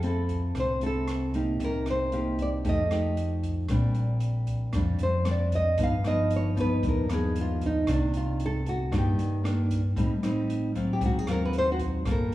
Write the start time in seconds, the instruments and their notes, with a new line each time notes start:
Already playing: fingered electric bass F2, nylon-string guitar F3 A4
0.03 nylon-string guitar C4 E4 A4, closed hi-hat
0.29 kick, closed hi-hat
0.55 fingered electric bass C2, nylon-string guitar C3, kick, cross-stick, closed hi-hat
0.60 nylon-string guitar C5
0.81 nylon-string guitar C4 E4 A4, closed hi-hat
0.86 nylon-string guitar A4
1.08 cross-stick, closed hi-hat
1.34 nylon-string guitar A#3 D#4 G4, kick, closed hi-hat
1.60 fingered electric bass C2, nylon-string guitar C3, kick, closed hi-hat
1.64 nylon-string guitar A#4
1.86 cross-stick, closed hi-hat
1.90 nylon-string guitar C5
2.12 nylon-string guitar A#3 D#4 G4, closed hi-hat
2.39 nylon-string guitar D5, kick, closed hi-hat
2.64 fingered electric bass F2, nylon-string guitar F3 A3 D#4 G4, kick, closed hi-hat
2.69 nylon-string guitar D#5
2.90 nylon-string guitar A3 D#4 G4, cross-stick, closed hi-hat
3.17 closed hi-hat
3.43 kick, closed hi-hat
3.69 fingered electric bass A#1, nylon-string guitar A#2 G3 C4 D4, kick, cross-stick, closed hi-hat
3.94 closed hi-hat
4.20 closed hi-hat
4.47 kick, closed hi-hat
4.73 fingered electric bass F2, nylon-string guitar F3 G3 C4 D4, kick, cross-stick, closed hi-hat
4.99 fingered electric bass F2, closed hi-hat
5.03 nylon-string guitar C5
5.25 nylon-string guitar G3 C4 D4, cross-stick, closed hi-hat
5.31 nylon-string guitar D5
5.52 nylon-string guitar D#5, kick, closed hi-hat
5.78 fingered electric bass G1, nylon-string guitar G2 F3 B3 D#4, kick, closed hi-hat
5.83 nylon-string guitar F5
6.04 nylon-string guitar F3 B3 D#4 D#5, cross-stick, closed hi-hat
6.30 closed hi-hat
6.36 nylon-string guitar C#5
6.56 nylon-string guitar F3 B3 D#4, kick, closed hi-hat
6.60 nylon-string guitar B4
6.83 fingered electric bass D#2, nylon-string guitar G2, kick, closed hi-hat
6.88 nylon-string guitar A#4
7.09 fingered electric bass D#2, nylon-string guitar F3 B3 D#4, cross-stick, closed hi-hat
7.13 nylon-string guitar G#4
7.36 closed hi-hat
7.41 nylon-string guitar F4
7.61 kick, closed hi-hat
7.66 nylon-string guitar D#4
7.87 fingered electric bass C2, nylon-string guitar C3 D#3 A#3 D4, kick, cross-stick, closed hi-hat
7.94 nylon-string guitar D4
8.14 nylon-string guitar F4, closed hi-hat
8.40 closed hi-hat
8.46 nylon-string guitar A4
8.66 nylon-string guitar F#4, kick, closed hi-hat
8.91 nylon-string guitar G2 D#3 A#3 D4, fingered electric bass G2, kick, cross-stick, closed hi-hat
8.98 nylon-string guitar G4
9.17 fingered electric bass G2, closed hi-hat
9.44 nylon-string guitar D#3 A#3 D4, cross-stick, closed hi-hat
9.70 kick, closed hi-hat
9.96 fingered electric bass A1, nylon-string guitar A2 G3 C4 D#4, kick, closed hi-hat
10.23 nylon-string guitar G3 C4 D#4, cross-stick, closed hi-hat
10.50 closed hi-hat
10.75 nylon-string guitar F#3 C4 F4, kick, closed hi-hat
10.93 nylon-string guitar G4
11.01 fingered electric bass G#1, nylon-string guitar G#2, kick, closed hi-hat
11.06 nylon-string guitar F#4
11.19 nylon-string guitar G#4
11.27 fingered electric bass D#2, nylon-string guitar F#3 C4 F4, cross-stick, closed hi-hat
11.31 nylon-string guitar A#4
11.45 nylon-string guitar B4
11.53 closed hi-hat
11.58 nylon-string guitar C5
11.72 nylon-string guitar F#4
11.79 kick, closed hi-hat
12.05 fingered electric bass G1, nylon-string guitar G3 A#3 F4 A4, kick, cross-stick, closed hi-hat
12.11 nylon-string guitar A#4